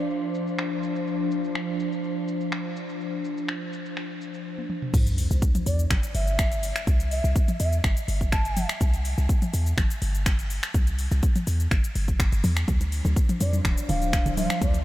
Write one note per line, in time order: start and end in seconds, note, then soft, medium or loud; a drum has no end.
0.00 4.90 F3 medium
0.00 4.90 D4 medium
0.00 4.90 C5 medium
0.10 shaker soft
0.34 shaker medium
0.47 shaker soft
0.59 finger snap medium
0.59 shaker soft
0.83 shaker medium
0.96 shaker soft
1.07 shaker soft
1.31 shaker medium
1.44 shaker soft
1.55 finger snap medium
1.55 shaker soft
1.80 shaker medium
1.92 shaker soft
2.04 shaker soft
2.28 shaker medium
2.41 shaker soft
2.52 finger snap loud
2.52 shaker soft
2.76 shaker medium
2.89 shaker soft
3.01 shaker soft
3.25 shaker medium
3.37 shaker soft
3.48 finger snap loud
3.48 shaker soft
3.73 shaker medium
3.86 shaker soft
3.97 finger snap medium
3.97 shaker soft
4.21 shaker medium
4.34 shaker soft
4.58 high tom soft
4.70 mid tom medium
4.82 mid tom medium
4.94 5.27 C2 loud
4.94 kick loud
4.94 closed hi-hat medium
4.94 crash loud
4.94 sub drop medium
4.94 shaker medium
5.07 closed hi-hat soft
5.07 shaker medium
5.18 open hi-hat medium
5.18 shaker medium
5.31 5.40 C2 loud
5.31 shaker medium
5.42 kick loud
5.42 closed hi-hat medium
5.42 shaker medium
5.55 closed hi-hat soft
5.55 mid tom medium
5.55 shaker medium
5.66 5.87 E2 medium
5.66 5.82 D5 medium
5.66 open hi-hat loud
5.66 shaker medium
5.79 closed hi-hat soft
5.79 shaker medium
5.90 6.01 G1 medium
5.90 finger snap loud
5.90 kick loud
5.90 closed hi-hat medium
5.90 mid tom medium
5.90 shaker medium
6.03 closed hi-hat soft
6.03 shaker medium
6.15 6.72 G1 medium
6.15 6.83 E5 medium
6.15 open hi-hat medium
6.15 shaker medium
6.27 closed hi-hat soft
6.27 shaker medium
6.39 finger snap loud
6.39 kick loud
6.39 closed hi-hat medium
6.39 shaker loud
6.52 closed hi-hat soft
6.52 shaker medium
6.63 open hi-hat medium
6.63 shaker medium
6.76 finger snap loud
6.76 closed hi-hat soft
6.76 shaker medium
6.87 7.21 C2 loud
6.87 kick loud
6.87 closed hi-hat medium
6.87 shaker medium
7.00 closed hi-hat soft
7.00 shaker soft
7.11 7.27 E5 medium
7.11 open hi-hat medium
7.11 shaker medium
7.24 7.34 C2 loud
7.24 shaker medium
7.36 kick loud
7.36 closed hi-hat medium
7.36 shaker medium
7.48 closed hi-hat soft
7.48 mid tom medium
7.48 shaker medium
7.60 7.80 E2 medium
7.60 7.75 E5 medium
7.60 open hi-hat medium
7.60 shaker loud
7.72 closed hi-hat soft
7.72 shaker medium
7.84 7.95 G1 medium
7.84 finger snap loud
7.84 kick loud
7.84 closed hi-hat medium
7.84 shaker medium
7.97 closed hi-hat soft
7.97 shaker loud
8.08 8.66 G1 medium
8.08 open hi-hat loud
8.08 shaker medium
8.21 kick medium
8.21 closed hi-hat soft
8.21 shaker medium
8.32 8.69 A5 loud
8.32 finger snap loud
8.32 kick loud
8.32 closed hi-hat medium
8.32 shaker loud
8.45 closed hi-hat soft
8.45 shaker medium
8.57 open hi-hat medium
8.57 mid tom medium
8.57 shaker loud
8.69 finger snap loud
8.69 closed hi-hat soft
8.69 shaker medium
8.81 9.14 C2 loud
8.81 kick loud
8.81 closed hi-hat medium
8.81 shaker loud
8.94 closed hi-hat soft
8.94 shaker medium
9.05 open hi-hat medium
9.05 shaker medium
9.18 9.27 C2 loud
9.18 shaker medium
9.29 kick loud
9.29 closed hi-hat medium
9.29 shaker loud
9.42 closed hi-hat soft
9.42 mid tom medium
9.42 shaker medium
9.54 9.74 E2 medium
9.54 open hi-hat medium
9.54 shaker loud
9.66 closed hi-hat soft
9.66 shaker medium
9.78 9.88 G1 medium
9.78 finger snap medium
9.78 kick loud
9.78 closed hi-hat medium
9.78 mid tom medium
9.78 shaker medium
9.90 closed hi-hat soft
9.90 shaker loud
10.02 10.60 G1 medium
10.02 open hi-hat medium
10.02 shaker medium
10.15 closed hi-hat soft
10.15 shaker medium
10.26 finger snap loud
10.26 kick loud
10.26 closed hi-hat medium
10.26 shaker loud
10.39 closed hi-hat soft
10.39 shaker medium
10.50 open hi-hat medium
10.50 shaker loud
10.63 finger snap loud
10.63 closed hi-hat soft
10.63 shaker medium
10.74 11.08 C2 loud
10.74 kick loud
10.74 closed hi-hat medium
10.74 shaker medium
10.87 closed hi-hat soft
10.87 shaker medium
10.99 open hi-hat medium
10.99 shaker medium
11.11 11.21 C2 loud
11.11 shaker medium
11.23 kick loud
11.23 closed hi-hat medium
11.23 shaker medium
11.36 closed hi-hat soft
11.36 mid tom loud
11.36 shaker medium
11.47 11.67 E2 medium
11.47 open hi-hat medium
11.47 shaker medium
11.60 closed hi-hat soft
11.60 shaker medium
11.71 11.82 G1 medium
11.71 finger snap medium
11.71 kick loud
11.71 closed hi-hat medium
11.71 shaker medium
11.84 closed hi-hat soft
11.84 shaker loud
11.95 12.19 G1 medium
11.95 open hi-hat medium
11.95 shaker medium
12.08 kick medium
12.08 closed hi-hat soft
12.08 shaker medium
12.20 12.30 G1 loud
12.20 finger snap loud
12.20 kick loud
12.20 closed hi-hat medium
12.20 shaker loud
12.32 12.42 G1 medium
12.32 closed hi-hat soft
12.32 shaker medium
12.44 12.64 E2 loud
12.44 open hi-hat medium
12.44 mid tom loud
12.44 shaker loud
12.57 finger snap medium
12.57 closed hi-hat soft
12.57 shaker medium
12.68 13.01 D2 medium
12.68 14.84 F3 medium
12.68 14.84 D4 medium
12.68 14.84 C5 medium
12.68 kick loud
12.68 closed hi-hat medium
12.68 high conga medium
12.68 low conga medium
12.68 shaker medium
12.81 closed hi-hat soft
12.81 muted conga medium
12.81 shaker medium
12.92 open hi-hat medium
12.92 shaker medium
13.05 13.14 D2 loud
13.05 muted conga soft
13.05 high conga medium
13.05 shaker medium
13.16 kick loud
13.16 closed hi-hat medium
13.16 shaker medium
13.29 closed hi-hat soft
13.29 mid tom loud
13.29 shaker medium
13.40 13.61 F2 medium
13.40 13.56 D5 medium
13.40 open hi-hat medium
13.40 muted conga medium
13.40 shaker loud
13.53 closed hi-hat soft
13.53 high conga medium
13.53 shaker medium
13.65 13.75 D1 medium
13.65 finger snap medium
13.65 kick loud
13.65 closed hi-hat medium
13.65 mid tom medium
13.65 muted conga soft
13.65 shaker medium
13.77 closed hi-hat soft
13.77 shaker loud
13.89 14.47 D1 medium
13.89 14.36 F5 medium
13.89 open hi-hat medium
13.89 muted conga medium
13.89 high conga medium
13.89 low conga medium
13.89 shaker medium
14.02 closed hi-hat soft
14.02 shaker medium
14.13 finger snap loud
14.13 kick loud
14.13 closed hi-hat medium
14.13 shaker loud
14.26 closed hi-hat soft
14.26 muted conga soft
14.26 low conga medium
14.26 shaker medium
14.37 14.59 F5 medium
14.37 open hi-hat medium
14.37 high conga loud
14.37 shaker medium
14.50 finger snap medium
14.50 closed hi-hat soft
14.50 muted conga medium
14.50 shaker medium
14.62 14.84 D2 loud
14.62 14.77 D5 medium
14.62 kick loud
14.62 closed hi-hat medium
14.62 high conga medium
14.62 shaker medium
14.74 closed hi-hat soft
14.74 muted conga medium
14.74 shaker soft